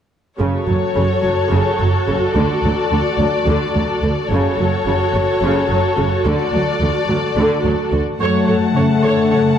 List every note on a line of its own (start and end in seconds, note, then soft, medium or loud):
0.39 0.48 F#1 soft
0.39 0.48 F#2 soft
0.39 0.66 C#3 soft
0.39 4.26 F#4 soft
0.39 4.26 A4 soft
0.39 2.31 C#5 soft
0.67 0.77 F#1 soft
0.67 0.77 F#2 soft
0.67 0.75 F#3 soft
0.95 1.04 F#1 soft
0.95 1.05 F#2 soft
0.95 1.03 C#3 soft
1.22 1.32 F#1 soft
1.22 1.32 F#2 soft
1.22 1.30 F#3 soft
1.50 1.60 F#1 soft
1.50 1.60 F#2 soft
1.50 1.77 C#3 soft
1.78 1.88 F#1 soft
1.78 1.89 F#2 soft
1.78 1.86 F#3 soft
2.06 2.16 F#1 soft
2.06 2.16 F#2 soft
2.06 2.14 C#3 soft
2.35 2.43 D2 soft
2.35 2.44 D2 soft
2.35 2.61 D3 soft
2.35 4.31 D5 soft
2.63 2.71 D2 soft
2.63 2.73 D2 soft
2.63 2.71 F#3 soft
2.91 3.00 D2 soft
2.91 2.99 D3 soft
3.18 3.26 D2 soft
3.18 3.27 D2 soft
3.18 3.28 F#3 soft
3.47 3.55 D2 soft
3.47 3.73 D3 soft
3.75 3.83 D2 soft
3.75 3.84 F#3 soft
4.03 4.11 D2 soft
4.03 4.11 D3 soft
4.29 4.38 F#1 soft
4.29 4.39 F#2 soft
4.29 4.57 C#3 soft
4.29 7.97 F#4 soft
4.29 7.96 A4 soft
4.29 6.25 C#5 soft
4.59 4.67 F#1 soft
4.59 4.67 F#2 soft
4.59 4.67 F#3 soft
4.86 4.94 F#1 soft
4.86 4.94 F#2 soft
4.86 4.94 C#3 soft
5.14 5.22 F#1 soft
5.14 5.22 F#2 soft
5.14 5.23 F#3 soft
5.41 5.49 F#1 soft
5.41 5.49 F#2 soft
5.41 5.69 C#3 soft
5.69 5.77 F#1 soft
5.69 5.78 F#2 soft
5.69 5.78 F#3 soft
5.97 6.06 F#1 soft
5.97 6.06 F#2 soft
5.97 6.05 C#3 soft
6.25 6.33 D2 soft
6.25 6.34 D2 soft
6.25 6.51 D3 soft
6.25 8.00 D5 soft
6.53 6.61 D2 soft
6.53 6.61 F#3 soft
6.81 6.89 D2 soft
6.81 6.90 D2 soft
6.81 6.89 D3 soft
7.08 7.16 D2 soft
7.08 7.17 D2 soft
7.08 7.17 F#3 soft
7.36 7.44 D2 soft
7.36 7.45 D2 soft
7.36 7.63 D3 soft
7.64 7.72 D2 soft
7.64 7.73 D2 soft
7.64 7.72 F#3 soft
7.92 8.00 D2 soft
7.92 8.01 D2 soft
7.92 8.00 D3 soft
8.19 8.28 F#2 soft
8.19 8.72 F#3 soft
8.19 9.59 A3 soft
8.19 8.46 A4 soft
8.19 8.46 C#5 soft
8.19 9.59 F#5 soft
8.19 9.59 A5 soft
8.47 8.56 F#2 soft
8.47 8.55 A4 soft
8.47 8.55 C#5 soft
8.75 8.83 F#2 soft
8.75 9.04 C#3 soft
8.75 8.84 A4 soft
8.75 8.84 C#5 soft
9.03 9.11 F#2 soft
9.03 9.32 D3 soft
9.03 9.30 A4 soft
9.03 9.29 C#5 soft
9.31 9.39 F#2 soft
9.31 9.59 C#3 soft
9.31 9.39 A4 soft
9.31 9.39 C#5 soft